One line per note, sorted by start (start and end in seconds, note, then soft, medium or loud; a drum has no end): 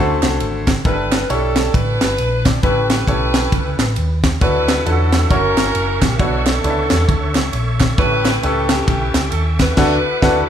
0.00 0.19 D2 loud
0.00 0.64 D3 medium
0.00 0.71 A3 medium
0.00 0.64 C#4 medium
0.00 0.64 E4 medium
0.00 0.71 E4 medium
0.00 0.71 F#4 medium
0.00 0.63 A4 loud
0.00 0.71 A4 medium
0.00 0.71 C5 loud
0.23 0.38 C2 loud
0.23 snare loud
0.23 clap loud
0.23 ride medium
0.40 0.79 G#1 loud
0.40 ride medium
0.67 kick loud
0.67 snare loud
0.67 clap medium
0.67 ride medium
0.85 1.23 G1 loud
0.85 1.53 G2 medium
0.85 1.20 D4 medium
0.85 1.29 D4 medium
0.85 1.20 E4 medium
0.85 1.29 E4 medium
0.85 1.21 G4 medium
0.85 1.20 A4 medium
0.85 0.92 A#4 medium
0.85 1.27 B4 loud
0.85 kick loud
0.85 ride medium
0.91 1.23 B4 medium
1.12 snare loud
1.12 clap loud
1.12 ride medium
1.29 1.68 B1 medium
1.29 1.99 D4 medium
1.29 1.74 D4 medium
1.29 1.99 E4 medium
1.29 1.74 E4 medium
1.29 1.99 G4 medium
1.29 1.99 A4 medium
1.29 1.74 A4 loud
1.29 1.99 C#5 medium
1.29 ride medium
1.56 snare loud
1.56 clap medium
1.56 ride medium
1.74 1.97 A1 loud
1.74 2.60 D4 medium
1.74 2.60 E4 medium
1.74 2.46 B4 loud
1.74 kick loud
1.74 ride medium
2.01 2.16 G1 medium
2.01 snare loud
2.01 clap loud
2.01 ride medium
2.18 2.57 A#1 loud
2.18 ride medium
2.46 2.63 D5 loud
2.46 kick loud
2.46 snare loud
2.46 clap medium
2.46 ride medium
2.63 3.01 A1 loud
2.63 3.31 A2 medium
2.63 2.98 C#4 medium
2.63 2.98 E4 medium
2.63 2.90 E4 medium
2.63 2.90 G4 medium
2.63 2.98 G4 medium
2.63 2.98 A4 medium
2.63 2.88 B4 loud
2.63 2.99 B4 medium
2.63 kick loud
2.63 ride medium
2.90 4.20 E4 medium
2.90 4.20 G4 medium
2.90 4.20 B4 loud
2.90 snare loud
2.90 clap loud
2.90 ride medium
3.07 3.45 B1 medium
3.07 3.77 C#4 medium
3.07 3.77 E4 medium
3.07 3.77 G4 medium
3.07 3.77 A4 medium
3.07 3.77 C#5 medium
3.07 kick medium
3.07 ride medium
3.34 snare loud
3.34 clap medium
3.34 ride medium
3.52 3.76 C#2 medium
3.52 kick loud
3.52 ride medium
3.79 3.94 A1 medium
3.79 snare loud
3.79 clap loud
3.79 ride medium
3.96 4.35 D#2 medium
3.96 ride medium
4.24 kick loud
4.24 snare loud
4.24 clap loud
4.24 ride medium
4.41 4.79 D2 loud
4.41 4.84 D3 medium
4.41 4.76 D4 medium
4.41 4.76 E4 medium
4.41 5.27 E4 medium
4.41 4.76 F#4 medium
4.41 4.86 F#4 medium
4.41 4.76 A4 medium
4.41 5.30 A4 medium
4.41 4.83 B4 loud
4.41 4.77 C#5 medium
4.41 10.49 E5 medium
4.41 6.18 F#5 medium
4.41 kick loud
4.41 ride medium
4.68 snare loud
4.68 clap loud
4.68 ride medium
4.86 5.24 E2 medium
4.86 5.30 D3 medium
4.86 5.28 C#4 medium
4.86 5.29 E4 medium
4.86 4.93 F4 medium
4.86 5.28 F#4 medium
4.86 5.27 A4 loud
4.86 5.31 A4 medium
4.86 5.31 B4 medium
4.86 ride medium
4.92 5.29 F#4 medium
5.13 snare loud
5.13 clap medium
5.13 ride medium
5.29 5.54 F#1 medium
5.29 6.06 C#4 medium
5.29 6.16 C#4 medium
5.29 6.06 E4 medium
5.29 6.16 E4 medium
5.29 6.06 F#4 medium
5.29 6.02 A#4 loud
5.29 6.19 A#4 medium
5.29 6.06 A#4 medium
5.29 6.06 C#5 medium
5.29 9.74 C#6 medium
5.29 kick loud
5.29 ride medium
5.57 5.72 G1 medium
5.57 snare loud
5.57 clap loud
5.57 ride medium
5.75 5.98 F#1 loud
5.75 ride medium
6.00 6.17 A#1 medium
6.00 6.19 G4 medium
6.00 kick loud
6.00 snare loud
6.00 clap loud
6.00 ride medium
6.18 6.88 B2 medium
6.18 7.05 A3 medium
6.18 6.55 D4 medium
6.18 6.46 D4 medium
6.18 6.55 E4 medium
6.18 6.46 F#4 loud
6.18 6.55 A4 medium
6.18 9.75 A4 medium
6.18 6.55 B4 medium
6.18 6.55 C#5 medium
6.18 7.97 C#5 medium
6.18 kick loud
6.18 ride medium
6.45 7.77 C#4 medium
6.45 7.77 D4 medium
6.45 7.80 A4 loud
6.45 snare loud
6.45 clap loud
6.45 ride medium
6.63 6.87 C#2 loud
6.63 7.34 D3 medium
6.63 7.34 E4 medium
6.63 7.34 A4 medium
6.63 7.34 B4 medium
6.63 6.71 D5 medium
6.63 ride medium
6.70 7.37 E5 medium
6.90 7.06 E2 medium
6.90 snare loud
6.90 clap medium
6.90 ride medium
7.09 7.32 D2 loud
7.09 kick loud
7.09 ride medium
7.35 7.51 C#2 medium
7.35 snare loud
7.35 clap loud
7.35 ride medium
7.53 7.92 A#1 medium
7.53 ride medium
7.80 kick loud
7.80 snare loud
7.80 clap medium
7.80 ride medium
7.98 8.36 A1 loud
7.98 8.67 A2 medium
7.98 8.34 C#4 medium
7.98 8.34 E4 medium
7.98 8.70 E4 medium
7.98 8.34 G4 medium
7.98 8.69 G4 medium
7.98 8.34 A4 medium
7.98 8.40 B4 loud
7.98 8.34 C#5 medium
7.98 9.76 G5 medium
7.98 kick loud
7.98 ride medium
8.25 snare loud
8.25 clap loud
8.25 ride medium
8.43 8.81 C#2 loud
8.43 9.13 C#4 medium
8.43 9.13 E4 medium
8.43 9.13 G4 medium
8.43 8.71 A4 loud
8.43 9.13 A4 medium
8.43 9.13 B4 medium
8.43 ride medium
8.69 9.56 C#4 medium
8.69 9.56 E4 medium
8.69 9.33 G4 medium
8.69 snare loud
8.69 clap medium
8.69 ride medium
8.88 9.11 B1 loud
8.88 kick loud
8.88 ride medium
9.14 9.30 C#2 medium
9.14 snare loud
9.14 clap loud
9.14 ride medium
9.32 9.70 D#2 loud
9.32 9.45 A4 loud
9.32 ride medium
9.60 10.49 E4 medium
9.60 10.49 F#4 medium
9.60 10.49 B4 loud
9.60 kick loud
9.60 snare loud
9.60 clap medium
9.60 ride medium
9.77 9.96 D2 loud
9.77 9.96 D3 loud
9.77 9.96 D4 loud
9.77 9.96 E4 loud
9.77 9.96 F#4 loud
9.77 9.96 A4 loud
9.77 9.96 B4 loud
9.77 10.49 B4 medium
9.77 10.49 F#5 medium
9.77 10.49 D6 medium
9.77 kick loud
9.77 snare loud
9.77 crash medium
10.22 10.41 D2 loud
10.22 10.41 D4 loud
10.22 10.41 E4 loud
10.22 10.41 F#4 loud
10.22 10.41 A4 loud
10.22 10.41 B4 loud
10.22 kick loud
10.22 snare loud